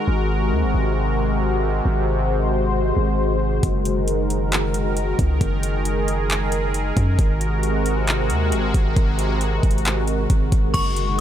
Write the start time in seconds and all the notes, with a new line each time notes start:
Already playing: G#3 F#4 A#4
0.08 G#1 C3
0.52 D#2
0.63 G#1
0.74 G#1
1.85 G#1 C5
2.97 G#1
3.63 F#1 D#3 A#4, kick, closed hi-hat
3.85 closed hi-hat
4.08 closed hi-hat
4.30 closed hi-hat
4.52 clap, closed hi-hat
4.74 closed hi-hat
4.97 closed hi-hat
5.19 C#2, kick, closed hi-hat
5.41 F#1 G#4, kick, closed hi-hat
5.63 closed hi-hat
5.85 closed hi-hat
6.08 closed hi-hat
6.30 clap, closed hi-hat
6.52 closed hi-hat
6.74 closed hi-hat
6.97 F#2, kick, closed hi-hat
7.19 G#1 C3 G#3 F#4, kick, closed hi-hat
7.41 closed hi-hat
7.63 closed hi-hat
7.86 closed hi-hat
8.07 clap, closed hi-hat
8.30 D#2, closed hi-hat
8.52 G#1, closed hi-hat
8.74 G#1, kick, closed hi-hat
8.96 G#1, kick, closed hi-hat
9.19 closed hi-hat
9.41 closed hi-hat
9.63 G#1, kick, closed hi-hat
9.71 closed hi-hat
9.78 closed hi-hat
9.85 clap, closed hi-hat
10.07 closed hi-hat
10.30 G#1, kick, closed hi-hat
10.52 G#1, kick, closed hi-hat
10.74 F#1 D#3 G#3 F#4 A#4 C#6, kick, closed hi-hat, crash
10.96 closed hi-hat